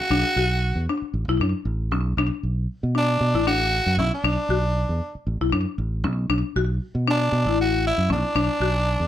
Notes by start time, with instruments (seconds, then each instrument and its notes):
Already playing: tenor saxophone F#4
0.10 fingered electric bass B1, marimba D4
0.36 fingered electric bass B1, marimba F#4
0.75 fingered electric bass E2
0.89 marimba D4
1.02 muted fingered electric bass stroke
1.14 fingered electric bass A1
1.28 fingered electric bass B1, marimba E4
1.40 fingered electric bass F#2, marimba D4
1.65 fingered electric bass A1
1.91 fingered electric bass B1, marimba C#4
2.17 fingered electric bass B1, marimba D4
2.43 fingered electric bass B1
2.83 fingered electric bass B2
2.95 marimba D4, tenor saxophone D4
3.21 fingered electric bass B2
3.34 fingered electric bass A1, marimba E4
3.47 marimba D4, tenor saxophone F#4
3.86 fingered electric bass F#2
3.97 fingered electric bass B1, marimba C#4, tenor saxophone E4
4.14 tenor saxophone D4
4.24 fingered electric bass B1, marimba D4
4.49 fingered electric bass B1, marimba F#4
4.89 fingered electric bass E2
5.15 muted fingered electric bass stroke
5.27 fingered electric bass A1
5.41 fingered electric bass B1, marimba E4
5.52 fingered electric bass F#2, marimba D4
5.78 fingered electric bass A1
6.04 fingered electric bass B1, marimba C#4
6.29 fingered electric bass B1, marimba D4
6.56 fingered electric bass B1, marimba F#4
6.95 fingered electric bass B2
7.08 marimba D4, tenor saxophone D4
7.32 fingered electric bass B2
7.45 fingered electric bass A1, marimba E4
7.61 tenor saxophone F#4
7.87 tenor saxophone E4
7.98 fingered electric bass F#2
8.10 fingered electric bass B1, marimba C#4, tenor saxophone D4
8.35 fingered electric bass B1, marimba D4
8.60 fingered electric bass B1, marimba F#4
9.00 fingered electric bass E2